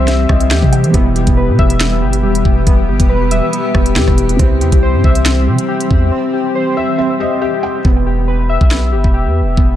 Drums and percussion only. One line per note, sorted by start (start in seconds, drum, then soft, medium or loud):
0.08 snare medium
0.08 closed hi-hat medium
0.29 kick medium
0.29 cross-stick loud
0.40 closed hi-hat medium
0.51 finger snap loud
0.51 snare loud
0.62 kick medium
0.73 closed hi-hat medium
0.84 closed hi-hat medium
0.94 kick loud
0.94 closed hi-hat medium
1.16 closed hi-hat medium
1.27 kick loud
1.27 closed hi-hat medium
1.59 kick medium
1.70 closed hi-hat medium
1.80 finger snap medium
1.80 snare loud
1.80 closed hi-hat medium
2.13 closed hi-hat medium
2.35 closed hi-hat medium
2.45 kick medium
2.67 kick loud
2.67 closed hi-hat medium
3.00 kick loud
3.00 closed hi-hat medium
3.31 closed hi-hat loud
3.53 closed hi-hat medium
3.75 kick loud
3.75 cross-stick loud
3.86 closed hi-hat medium
3.96 finger snap medium
3.96 snare loud
4.08 kick medium
4.08 cross-stick medium
4.18 closed hi-hat medium
4.29 closed hi-hat medium
4.39 kick loud
4.39 closed hi-hat medium
4.61 closed hi-hat medium
4.72 kick medium
4.72 closed hi-hat medium
5.04 kick medium
5.15 closed hi-hat medium
5.26 finger snap medium
5.26 snare loud
5.26 closed hi-hat medium
5.58 closed hi-hat medium
5.81 closed hi-hat medium
5.91 kick medium
7.85 kick loud
8.61 kick medium
8.71 finger snap medium
8.71 snare loud
9.04 kick medium
9.57 kick loud